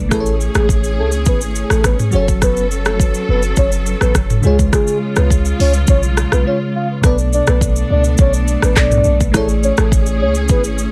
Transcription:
Already playing: string section A3, fm electric piano D5
0.09 808-style bass A1, fm electric piano A3 E4 G#4, string section C#4 G#4, soft synth lead A4, kick, cross-stick, shaker
0.14 fm electric piano B4
0.20 fm electric piano C#5
0.26 shaker
0.41 shaker
0.55 808-style bass A1, soft synth lead G#4, cross-stick, shaker
0.69 kick, shaker
0.84 shaker
0.98 808-style bass C#2, soft synth lead A4
1.12 shaker
1.25 808-style bass G#1, soft synth lead B4, kick, shaker
1.41 shaker
1.55 shaker
1.70 808-style bass A1, soft synth lead A4, cross-stick, shaker
1.84 soft synth lead B4, kick, cross-stick, shaker
1.99 mid tom, shaker
2.11 808-style bass F#1, fm electric piano F#3 F#4 G#4, string section F#3 A4, soft synth lead C#5, shaker
2.16 fm electric piano C#5
2.21 fm electric piano A4
2.28 kick, shaker
2.42 soft synth lead B4, kick, cross-stick, shaker
2.57 shaker
2.71 shaker
2.85 soft synth lead A4, cross-stick, shaker
3.00 kick, shaker
3.14 shaker
3.29 808-style bass F#1, soft synth lead B4
3.43 shaker
3.56 808-style bass F#1, soft synth lead C#5, kick, shaker
3.72 shaker
3.86 shaker
4.01 808-style bass A1, soft synth lead B4, cross-stick, shaker
4.15 808-style bass F#1, kick, cross-stick, shaker
4.30 mid tom, shaker
4.42 808-style bass C#2, fm electric piano C#3 G#3 F4, string section C#3 G#3 F4, soft synth lead G#4, shaker
4.47 fm electric piano C#5
4.59 kick, shaker
4.73 soft synth lead G#4, kick, cross-stick, shaker
4.87 shaker
5.16 808-style bass C#2, soft synth lead B4, cross-stick, shaker
5.30 kick, shaker
5.45 shaker
5.60 808-style bass C#2, soft synth lead C#5, open hi-hat
5.73 shaker
5.87 808-style bass B1, soft synth lead C#5, kick, shaker
6.03 shaker
6.17 cross-stick, shaker
6.32 808-style bass B1, soft synth lead B4, cross-stick, shaker
6.45 fm electric piano C#3 G#3 F4 C#5, soft synth lead C#5
6.76 soft synth lead F5
7.01 808-style bass B1, fm electric piano B2 B3 A4, string section A3 B3 D4, soft synth lead B4, kick, cross-stick, shaker
7.06 fm electric piano D5
7.18 shaker
7.33 soft synth lead D5, shaker
7.47 808-style bass B1, soft synth lead B4, cross-stick, shaker
7.61 kick, shaker
7.76 shaker
7.90 808-style bass C#2, soft synth lead D5
8.04 shaker
8.18 808-style bass B1, soft synth lead C#5, kick, shaker
8.33 shaker
8.48 shaker
8.62 808-style bass A1, soft synth lead B4, cross-stick, shaker
8.75 808-style bass B1, fm electric piano B2 B3 A4 D5, soft synth lead D5, kick, cross-stick, clap, shaker
8.91 mid tom, shaker
9.04 808-style bass B1, shaker
9.20 kick, shaker
9.32 808-style bass A1, fm electric piano A3 E4 G#4, string section C#4 G#4, soft synth lead A4, kick, cross-stick, shaker
9.37 fm electric piano C#5
9.49 shaker
9.63 soft synth lead C#5, shaker
9.77 808-style bass A1, soft synth lead A4, cross-stick, shaker
9.92 kick, shaker
10.06 shaker
10.21 808-style bass C#2, soft synth lead C#5
10.35 shaker
10.48 808-style bass G#1, soft synth lead B4, kick, shaker
10.64 shaker
10.78 shaker

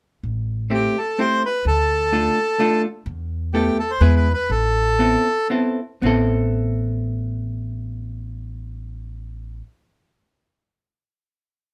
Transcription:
0.23 upright bass A1
0.70 hollow-body jazz guitar A3 C4 E4 G4, bandoneon G4
0.98 bandoneon A4
1.18 hollow-body jazz guitar A3 C4 E4 G4, bandoneon C5
1.46 bandoneon B4
1.65 upright bass D2, bandoneon A4
2.12 hollow-body jazz guitar A3 D4 F4 A4
2.59 hollow-body jazz guitar A3 D4 F4 A4
3.06 upright bass E2
3.54 hollow-body jazz guitar A3 B3 E4 A4, bandoneon G4
3.80 bandoneon A4
3.91 bandoneon C5
4.00 upright bass E2, hollow-body jazz guitar G#3 B3 E4 G#4, bandoneon B4
4.16 bandoneon B4
4.34 bandoneon B4
4.50 upright bass A1, bandoneon A4
4.99 hollow-body jazz guitar B3 C4 E4 A4
5.50 hollow-body jazz guitar B3 C4 E4 A4
6.02 upright bass A1, hollow-body jazz guitar B3 C4 E4
6.06 hollow-body jazz guitar A4

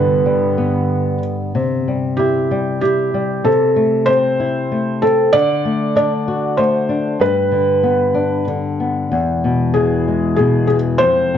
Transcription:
Already playing: nylon-string guitar G2 D3, ambient pad G2 D3 B3, felt piano B4
0.26 nylon-string guitar G3
0.58 nylon-string guitar B3
1.55 nylon-string guitar C3
1.88 nylon-string guitar G3
2.17 nylon-string guitar E4, felt piano G4
2.51 nylon-string guitar G3
2.81 nylon-string guitar E4, felt piano G4
3.14 nylon-string guitar G3
3.45 nylon-string guitar C3, felt piano A4
3.76 nylon-string guitar A3
4.06 nylon-string guitar C4, felt piano C5
4.40 nylon-string guitar E4
4.72 nylon-string guitar A3
5.02 nylon-string guitar C4, felt piano A4
5.33 nylon-string guitar D3, felt piano D5
5.65 nylon-string guitar A3
5.96 nylon-string guitar D4, felt piano D5
6.28 nylon-string guitar F#4
6.57 nylon-string guitar A3, felt piano C5
6.89 nylon-string guitar D4
7.20 nylon-string guitar G2, felt piano B4
7.51 nylon-string guitar D3
7.83 nylon-string guitar B3
8.14 nylon-string guitar D4
8.47 nylon-string guitar D3
8.80 nylon-string guitar B3
9.12 nylon-string guitar E2, ambient pad E2 B2 G#3
9.44 nylon-string guitar B2
9.74 nylon-string guitar E3, felt piano G#4
10.08 nylon-string guitar G#3
10.36 nylon-string guitar B2, felt piano G#4
10.67 nylon-string guitar E3, felt piano G#4
10.98 ambient pad C3, felt piano C5
11.02 ambient pad F2 A3, nylon-string guitar F2
11.34 nylon-string guitar C3

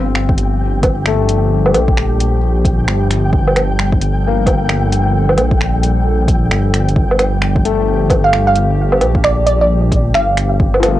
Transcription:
Already playing: detuned saw bass G1, ambient pad F3 G3 G4, felt piano C4, synth texture G5
0.15 finger snap
0.29 kick
0.38 closed hi-hat
0.83 kick, closed hi-hat, low woodblock
1.06 felt piano A3, finger snap
1.29 closed hi-hat
1.66 low woodblock
1.74 detuned saw bass A#1, closed hi-hat, low woodblock
1.88 kick
1.97 finger snap
2.20 closed hi-hat
2.65 kick, closed hi-hat
2.88 detuned saw bass G1, finger snap
3.11 finger snap, closed hi-hat
3.33 detuned saw bass G1, ambient pad A4, kick
3.48 low woodblock
3.56 finger snap, closed hi-hat, low woodblock
3.79 finger snap
3.92 kick
4.01 closed hi-hat
4.27 felt piano A#3
4.46 kick, closed hi-hat, low woodblock
4.69 finger snap
4.92 closed hi-hat
5.29 low woodblock
5.36 detuned saw bass A#1, closed hi-hat, low woodblock
5.51 kick
5.61 finger snap
5.83 closed hi-hat
6.28 kick, closed hi-hat
6.51 detuned saw bass G1, finger snap
6.74 finger snap, closed hi-hat
6.88 closed hi-hat
6.96 detuned saw bass G1, ambient pad G4, kick
7.11 low woodblock
7.19 finger snap, closed hi-hat, low woodblock
7.42 finger snap
7.56 kick
7.65 felt piano A3, closed hi-hat
8.10 kick, closed hi-hat, low woodblock
8.24 synth pluck F5
8.33 finger snap
8.47 synth pluck F5
8.56 closed hi-hat
8.92 low woodblock
9.01 detuned saw bass A#1, closed hi-hat, low woodblock
9.15 kick
9.24 synth pluck D5, finger snap
9.46 synth pluck D5, closed hi-hat
9.61 synth pluck D5
9.92 kick, closed hi-hat
10.14 detuned saw bass G1, synth pluck F5, finger snap
10.37 finger snap, closed hi-hat
10.60 detuned saw bass G1, ambient pad D4, kick
10.74 low woodblock
10.80 felt piano F3, finger snap, closed hi-hat, low woodblock
10.85 felt piano A3
10.90 felt piano A#3

